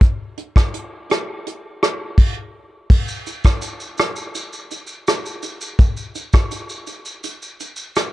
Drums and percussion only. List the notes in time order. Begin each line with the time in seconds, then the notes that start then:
0.01 kick, closed hi-hat
0.37 closed hi-hat
0.56 kick, cross-stick
0.74 closed hi-hat
1.09 cross-stick, closed hi-hat
1.47 closed hi-hat
1.83 cross-stick, closed hi-hat
2.18 kick, crash
2.90 kick, crash
3.08 shaker
3.27 closed hi-hat, shaker
3.44 kick, cross-stick, shaker
3.62 closed hi-hat, shaker
3.80 shaker
3.98 cross-stick, closed hi-hat, shaker
4.16 shaker
4.35 closed hi-hat, shaker
4.53 shaker
4.71 closed hi-hat, shaker
4.87 shaker
5.08 cross-stick, closed hi-hat, shaker
5.26 shaker
5.43 closed hi-hat, shaker
5.61 shaker
5.79 kick, closed hi-hat, shaker
5.97 shaker
6.15 closed hi-hat, shaker
6.33 kick, cross-stick, shaker
6.51 closed hi-hat, shaker
6.69 shaker
6.87 closed hi-hat, shaker
7.05 shaker
7.24 closed hi-hat, shaker
7.42 shaker
7.60 closed hi-hat, shaker
7.76 shaker
7.96 cross-stick, closed hi-hat, shaker